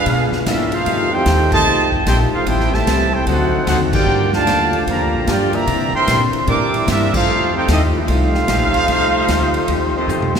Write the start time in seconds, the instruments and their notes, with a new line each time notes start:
Already playing: trombone section D3 G#3 B3 D4 F4, trumpet section D4 G#4 B4 F5
0.06 upright bass B2, hollow-body jazz guitar B2 F3 G#3 D4, kick, ride
0.32 muted upright bass stroke, snare
0.45 upright bass G#2, hollow-body jazz guitar B2 F3 G#3 D4, trumpet section C#4 G4 A#4 E5, trombone section E4, kick, snare, hi-hat pedal, ride
0.71 trombone section A3 C4 F4, trumpet section D#4 A4 C5 F5, ride
0.84 upright bass F2, trombone section D#3 G3 A3, hollow-body jazz guitar F3 A3 D#4 G4, kick, ride
1.11 trombone section C4 D#4 G4, trumpet section D#4 A4 C5 G5
1.26 upright bass D#2, hollow-body jazz guitar F3 A3 D#4 G4, kick, snare, hi-hat pedal, ride
1.50 trombone section C3 D#3 A3, trumpet section G4 D#5 A5, kick, crash
1.54 trumpet section C5
1.65 upright bass C2, hollow-body jazz guitar F3 A3 D#4 G4
1.92 kick
2.05 upright bass A#1, hollow-body jazz guitar F3 A3 D#4 G4, trombone section C4 D#4 G4, trumpet section D#4 A4 C5 G5, kick, snare, hi-hat pedal, ride
2.31 trombone section A3 C4 F4, trumpet section D#4 A4 C5 F5, muted upright bass stroke
2.45 upright bass A1, hollow-body jazz guitar A2 G3 C4 E4, trombone section C3 A3 C4 E4 G4, trumpet section E4 A4 C5 G5, kick, ride
2.60 snare
2.72 trombone section C3 E3 A3, trumpet section G4 C5 E5 A5, snare
2.86 upright bass C2, hollow-body jazz guitar A2 G3 C4 E4, kick, snare, hi-hat pedal, ride
3.12 trombone section C4 E4 G4, trumpet section E4 A4 C5 G5
3.26 upright bass D2, trombone section D3 F#3 A3 C4 D#4 F#4, hollow-body jazz guitar D3 F#3 C4 D#4, trumpet section D#4 A4 C5 F#5, kick, ride
3.67 upright bass D#2, hollow-body jazz guitar D3 F#3 C4 D#4, trombone section A3 C4 F#4, trumpet section D#4 A4 C5 F#5, kick, snare, hi-hat pedal, ride
3.93 trombone section A#3 D4 G4, trumpet section F4 A#4 D5 G5, kick, crash
4.05 upright bass G2, hollow-body jazz guitar G2 F3 A#3 D4, trombone section G3 D4 F4
4.33 trombone section D3 F3 A3, trumpet section G4 D5 F5 A5, snare
4.46 upright bass D#2, hollow-body jazz guitar G2 F3 A#3 D4, kick, snare, hi-hat pedal, ride
4.73 ride
4.87 upright bass F2, hollow-body jazz guitar G2 F3 A#3 D4, trombone section D3 F3 A#3, trumpet section G4 D5 F5 A#5, kick, ride
5.00 upright bass D2
5.13 upright bass A#1
5.26 hollow-body jazz guitar G2 F3 A#3 D4, upright bass G2, trombone section A#3 D4 G4, trumpet section F4 A#4 D5 G5, kick, snare, hi-hat pedal, ride
5.52 trombone section E3 G3 A#3, trumpet section G4 D5 E5 A#5, ride
5.66 hollow-body jazz guitar C3 E3 A#3 D4, upright bass C3, trombone section C4 E4, kick, ride
5.93 trombone section E3 G3 C4, trumpet section A#4 E5 G5 C6, muted upright bass stroke
6.07 upright bass A#2, hollow-body jazz guitar C3 E3 A#3 D4, kick, snare, hi-hat pedal, ride
6.33 muted upright bass stroke, ride
6.46 upright bass A2, hollow-body jazz guitar C3 E3 A#3 D4, trombone section G3 D4 A#4, trumpet section E5, kick, ride
6.50 trumpet section A#4 G5 D6
6.74 ride
6.87 upright bass G2, hollow-body jazz guitar C3 E3 A#3 D4, trombone section G3 A#3 E4, trumpet section A#4, kick, snare, hi-hat pedal, ride
6.91 trumpet section D4 G4 E5
7.13 trombone section A3 C4 F4, trumpet section D#4 A4 C5 F5, kick, crash
7.27 upright bass F2, hollow-body jazz guitar F3 A3 D#4 G4, trombone section G3 A3 D#4 F4
7.54 trombone section C4 D#4 G4, trumpet section D#4 A4 C5 G5
7.67 upright bass D#2, hollow-body jazz guitar F3 A3 D#4 G4, trombone section A3 C4 D#4, trumpet section G4, kick, snare, hi-hat pedal, ride
7.71 trumpet section C4 A4 D#5
7.94 trombone section A3 C4 F4, trumpet section A4 C5 F5
7.98 trumpet section D#4
8.08 upright bass C2, hollow-body jazz guitar F3 A3 D#4 G4, kick, ride
8.35 snare
8.48 upright bass A#1, hollow-body jazz guitar F3 A3 D#4 G4, kick, snare, hi-hat pedal, ride
8.61 upright bass A1
8.74 upright bass F1, ride
8.88 upright bass C2, hollow-body jazz guitar F3 A3 D#4 G4, kick, ride
9.27 upright bass D2, hollow-body jazz guitar F3 A3 D#4 G4, kick, snare, hi-hat pedal, ride
9.54 ride
9.68 upright bass D#2, hollow-body jazz guitar F3 A3 D#4 G4, kick, ride
9.94 trombone section D#3 A3 C4, trumpet section A3, muted upright bass stroke
9.98 trumpet section D#4 G4 C5
10.07 upright bass F2, hollow-body jazz guitar F3 A3 D#4 G4, floor tom, hi-hat pedal
10.22 mid tom
10.35 trombone section C3 D#3 A3, snare